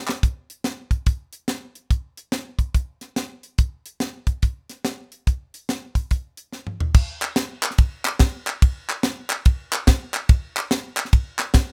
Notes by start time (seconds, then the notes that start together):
0.08 snare, clap
0.23 kick, closed hi-hat
0.50 closed hi-hat
0.64 snare, closed hi-hat
0.91 kick, closed hi-hat
1.06 kick, closed hi-hat
1.33 closed hi-hat
1.48 snare, closed hi-hat
1.75 closed hi-hat
1.91 kick, closed hi-hat
2.17 closed hi-hat
2.32 snare, closed hi-hat
2.59 kick, closed hi-hat
2.74 kick, closed hi-hat
3.01 snare, closed hi-hat
3.16 snare, closed hi-hat
3.43 closed hi-hat
3.58 kick, closed hi-hat
3.86 closed hi-hat
4.00 snare, closed hi-hat
4.27 kick, closed hi-hat
4.42 kick, closed hi-hat
4.69 snare, closed hi-hat
4.85 snare, closed hi-hat
5.12 closed hi-hat
5.27 kick, closed hi-hat
5.54 closed hi-hat
5.69 snare, closed hi-hat
5.95 kick, closed hi-hat
6.11 kick, closed hi-hat
6.37 closed hi-hat
6.53 snare
6.67 mid tom
6.80 floor tom
6.94 kick, crash
7.22 clap, ride
7.36 snare, ride
7.63 clap, ride
7.71 snare
7.78 kick, ride
8.05 snare, clap, ride
8.19 kick, snare, ride
8.47 clap, ride
8.62 kick, ride
8.89 clap, ride
9.03 snare, ride
9.30 clap, ride
9.45 kick, ride
9.72 clap, ride
9.87 kick, snare, ride
10.14 clap, ride
10.29 kick, ride
10.56 clap, ride
10.71 snare, ride
10.97 clap, ride
11.05 snare
11.13 kick, ride
11.39 snare, clap, ride
11.54 kick, snare, ride